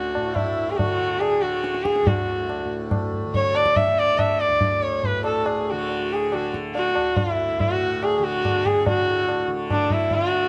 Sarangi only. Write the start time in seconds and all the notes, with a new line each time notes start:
Already playing: F#4
0.34 E4
0.70 G#4
0.77 F#4
1.20 G#4
1.42 F#4
1.84 G#4
2.07 F#4
3.35 C#5
3.56 D5
3.76 E5
3.99 D5
4.19 E5
4.40 D5
4.82 C#5
5.05 B4
5.25 A4
5.47 G#4
5.70 F#4
6.13 G#4
6.33 F#4
6.75 F#4
7.17 F4
7.32 E4
7.60 F#4
8.03 G#4
8.16 G#4
8.24 F#4
8.66 G#4
8.87 F#4
9.71 D4
9.92 E4
10.14 F4
10.29 F#4